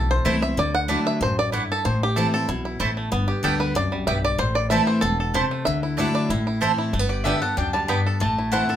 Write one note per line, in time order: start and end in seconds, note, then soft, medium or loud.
0.00 0.21 B1 medium
0.00 0.54 E2 loud
0.00 0.26 E4 medium
0.00 1.34 A4 medium
0.11 0.43 C5 loud
0.25 0.52 C2 medium
0.25 0.41 E3 medium
0.25 0.35 A3 medium
0.25 0.42 A3 loud
0.25 0.42 C4 medium
0.25 0.35 E4 medium
0.25 0.42 E4 medium
0.25 0.41 E4 loud
0.25 0.35 C5 loud
0.25 0.35 A5 loud
0.42 0.57 C4 medium
0.42 0.57 E4 medium
0.42 0.58 E5 loud
0.57 0.95 D2 loud
0.57 1.18 D3 medium
0.57 0.75 D5 loud
0.75 1.06 F#5 loud
0.88 1.19 F#3 medium
0.88 0.98 A3 medium
0.88 1.19 A3 medium
0.88 1.34 D4 medium
0.88 1.20 D4 medium
0.88 0.98 E4 loud
0.88 1.20 E4 loud
0.88 0.98 D5 loud
0.88 0.99 F#5 medium
1.07 1.22 E5 loud
1.21 1.59 A1 medium
1.21 1.51 F#2 medium
1.21 1.38 C5 loud
1.39 1.52 D5 loud
1.52 1.83 G2 medium
1.52 1.62 A3 medium
1.52 1.84 E4 medium
1.52 1.62 E4 medium
1.52 1.63 D5 medium
1.52 1.63 F#5 medium
1.72 1.86 A4 medium
1.85 2.24 A1 medium
1.85 2.45 A2 medium
1.85 2.00 C5 medium
2.03 2.35 G4 medium
2.16 2.33 E3 medium
2.16 2.26 A3 medium
2.16 2.33 A3 medium
2.16 2.33 C4 medium
2.16 2.26 E4 medium
2.16 2.33 E4 loud
2.16 2.33 A4 medium
2.16 2.26 C5 medium
2.16 2.26 A5 loud
2.34 2.49 C4 medium
2.34 2.48 E4 medium
2.34 2.49 A4 medium
2.48 2.75 B1 medium
2.48 2.79 B2 medium
2.48 2.64 E4 medium
2.65 2.79 E4 medium
2.80 3.07 A1 medium
2.80 3.10 A2 medium
2.80 2.89 A3 medium
2.80 2.89 E4 loud
2.80 3.12 E4 medium
2.80 2.90 C5 loud
2.80 2.90 A5 medium
2.97 3.12 A3 medium
3.12 3.32 G1 medium
3.12 3.72 G2 medium
3.12 3.57 B3 medium
3.28 3.44 G4 medium
3.43 3.71 D2 medium
3.43 3.74 D3 medium
3.43 3.74 G3 medium
3.43 3.53 B3 medium
3.43 3.74 B3 medium
3.43 3.53 G4 loud
3.43 3.74 G4 loud
3.43 3.61 A4 medium
3.43 3.53 D5 medium
3.43 3.54 G5 loud
3.60 3.76 B4 loud
3.75 4.02 C2 medium
3.75 4.06 F#2 loud
3.75 4.07 D5 loud
3.92 4.36 G3 medium
4.07 4.34 B1 medium
4.07 4.38 G2 medium
4.07 4.17 B3 medium
4.07 4.17 G4 loud
4.07 4.17 D5 medium
4.07 4.23 E5 loud
4.07 4.17 G5 loud
4.25 4.40 D5 loud
4.38 4.77 A1 medium
4.38 4.99 A2 loud
4.38 4.56 C5 loud
4.55 4.70 D5 loud
4.70 5.01 E3 medium
4.70 4.80 A3 medium
4.70 5.01 A3 medium
4.70 5.02 C4 medium
4.70 4.80 E4 medium
4.70 5.02 E4 loud
4.70 4.81 C5 loud
4.70 4.88 E5 loud
4.70 4.81 A5 loud
4.87 5.03 C5 loud
5.01 5.41 E1 medium
5.01 5.33 B2 medium
5.01 5.17 A4 loud
5.20 5.64 A4 medium
5.34 5.65 C3 loud
5.34 5.44 A3 medium
5.34 5.44 E4 loud
5.34 5.44 C5 loud
5.34 5.64 C5 loud
5.34 5.44 A5 loud
5.51 5.66 A3 medium
5.65 6.05 D2 medium
5.65 6.27 D3 medium
5.65 5.83 E5 loud
5.83 6.14 E4 medium
5.97 6.29 F#3 medium
5.97 6.07 A3 medium
5.97 6.29 A3 medium
5.97 6.30 D4 medium
5.97 6.29 D4 medium
5.97 6.07 E4 loud
5.97 6.29 E4 loud
5.97 6.07 D5 loud
5.97 6.08 F#5 loud
6.15 6.29 D5 medium
6.29 6.68 A1 loud
6.29 6.91 A2 loud
6.29 6.46 E4 medium
6.47 6.77 E4 medium
6.61 6.92 E3 medium
6.61 6.71 A3 medium
6.61 6.92 A3 medium
6.61 6.92 C4 medium
6.61 6.71 E4 loud
6.61 6.93 E4 loud
6.61 6.93 A4 medium
6.61 6.71 C5 loud
6.61 6.71 A5 loud
6.78 6.93 E4 medium
6.93 7.32 G1 medium
6.93 7.54 G2 medium
6.93 6.99 A3 medium
6.99 7.25 B3 medium
7.09 7.54 G4 medium
7.09 7.24 D5 medium
7.24 7.41 D3 medium
7.24 7.42 G3 medium
7.24 7.35 B3 medium
7.24 7.42 B3 medium
7.24 7.56 D4 medium
7.24 7.35 G4 medium
7.24 7.40 G4 loud
7.24 7.35 D5 medium
7.24 7.40 E5 medium
7.24 7.35 G5 loud
7.41 7.57 B3 soft
7.41 7.56 G4 medium
7.41 7.86 A4 medium
7.41 7.57 F#5 medium
7.57 7.96 D2 medium
7.57 7.87 F#2 medium
7.57 8.03 D4 medium
7.57 7.73 G5 loud
7.73 8.18 G3 medium
7.73 7.88 A5 loud
7.88 8.19 G2 medium
7.88 7.98 B3 medium
7.88 8.21 B3 medium
7.88 7.98 G4 medium
7.88 7.98 D5 loud
7.88 7.99 G5 loud
7.88 8.21 B5 loud
8.06 8.21 A4 medium
8.20 8.60 A1 medium
8.20 8.76 A2 medium
8.20 8.66 A3 medium
8.20 8.52 A5 loud
8.38 8.52 E4 medium
8.52 8.68 E3 medium
8.52 8.62 A3 medium
8.52 8.68 A3 medium
8.52 8.69 C4 medium
8.52 8.62 E4 medium
8.52 8.68 E4 medium
8.52 8.76 E4 medium
8.52 8.62 C5 medium
8.52 8.76 F#5 medium
8.52 8.62 A5 loud
8.69 8.76 C4 soft
8.69 8.76 E4 medium
8.69 8.76 A4 medium